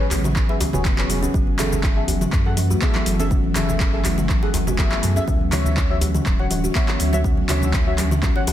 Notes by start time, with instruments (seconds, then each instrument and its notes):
Already playing: sub bass A1, ambient pad C#3 B3 G#4
0.11 kalimba F#3, clap, open hi-hat, muted conga, high conga, djembe bass, shaker
0.24 kalimba E3, mid tom, djembe slap, shaker
0.36 kick, clap, high conga, shaker
0.49 synth stab G#4 B4 E5, djembe slap, muted conga
0.60 kalimba E3, open hi-hat, djembe slap, djembe tone, djembe bass, shaker
0.73 sub bass E1, kalimba F#4, synth stab G#4 B4 C#5, djembe tone, low conga, shaker
0.85 kalimba B3, kick, clap, high conga, shaker
0.98 synth stab G#4 B4 C#5, clap, muted conga
1.09 kalimba F#3, open hi-hat, low conga, shaker
1.22 kalimba C#4, djembe tone, shaker
1.34 sub bass F#1, ambient pad E3 A3 F#4, kalimba F#3, kick, mid tom, muted conga, shaker
1.47 high conga
1.59 kalimba E3, synth stab G#4 A4 E5, clap, open hi-hat, mid tom, low conga, shaker
1.72 muted conga, djembe tone, low conga, shaker
1.83 kick, clap, shaker
1.97 synth stab G#4 A4 E5
2.08 kalimba F#3, open hi-hat, muted conga, high conga, djembe bass, shaker
2.21 kalimba E3, mid tom, djembe slap, shaker
2.32 sub bass F#2, kick, clap, shaker
2.46 synth stab G#4 A4 F#5, muted conga
2.57 kalimba E3, open hi-hat, high conga, shaker
2.70 kalimba F#4, djembe tone, shaker
2.82 kalimba B3, synth stab G#4 A4 E5, kick, clap, shaker
2.95 clap, muted conga, djembe tone, high conga
3.06 sub bass F#1, kalimba F#3, open hi-hat, shaker
3.19 kalimba C#4, synth stab G#4 A4 E5, djembe slap, high conga, shaker
3.30 kalimba F#3, ambient pad G#5, kick, mid tom, muted conga, shaker
3.44 high conga
3.55 sub bass F#1, kalimba E3, synth stab G#4 A4 E5, clap, open hi-hat, mid tom, low conga, shaker
3.68 muted conga, djembe tone, low conga, shaker
3.80 kick, clap, shaker
3.93 synth stab G#4 A4 E5
4.05 kalimba F#3, clap, open hi-hat, muted conga, high conga, djembe bass, shaker
4.18 kalimba E3, mid tom, djembe slap, shaker
4.29 kick, clap, high conga, shaker
4.42 synth stab G#4 A4 F#5, djembe slap, muted conga
4.54 sub bass F#1, kalimba E3, open hi-hat, djembe slap, djembe tone, djembe bass, shaker
4.67 kalimba F#4, djembe tone, low conga, shaker
4.78 kalimba B3, synth stab G#4 A4 E5, kick, clap, high conga, djembe tone, shaker
4.91 clap, muted conga
5.03 sub bass F#2, kalimba F#3, open hi-hat, low conga, shaker
5.16 kalimba C#4, synth stab G#4 A4 E5, djembe tone, shaker
5.28 sub bass D2, ambient pad D3 C#4 F#4, kalimba F#3, kick, mid tom, muted conga, shaker
5.41 high conga
5.52 kalimba E3, synth stab F#4 C#5 E5, clap, open hi-hat, mid tom, low conga, shaker
5.66 muted conga, djembe tone, low conga, shaker
5.77 kick, clap, shaker
5.90 synth stab F#4 C#5 E5
6.01 kalimba F#3, open hi-hat, muted conga, high conga, djembe bass, shaker
6.14 kalimba E3, mid tom, djembe slap, shaker
6.26 sub bass D1, kick, clap, shaker
6.39 synth stab F#4 C#5 F#5, muted conga
6.50 kalimba E3, open hi-hat, high conga, shaker
6.64 kalimba F#4, djembe tone, shaker
6.75 kalimba B3, synth stab F#4 C#5 E5, kick, clap, shaker
6.88 clap, muted conga, high conga, djembe tone
7.00 sub bass D2, kalimba F#3, open hi-hat, shaker
7.13 kalimba C#4, synth stab F#4 C#5 E5, djembe slap, high conga, shaker
7.24 kalimba F#3, kick, mid tom, muted conga, shaker
7.37 high conga
7.49 sub bass D2, kalimba E3, synth stab F#4 C#5 E5, clap, open hi-hat, mid tom, high conga, low conga, shaker
7.62 muted conga, djembe tone, low conga, shaker
7.74 kick, clap, shaker
7.87 synth stab F#4 C#5 E5
7.98 kalimba F#3, clap, open hi-hat, muted conga, high conga, djembe bass, shaker
8.11 kalimba E3, mid tom, djembe slap, shaker
8.23 kick, clap, high conga, shaker
8.36 synth stab F#4 C#5 F#5, djembe slap, muted conga
8.47 kalimba E3, open hi-hat, djembe slap, djembe tone, djembe bass, shaker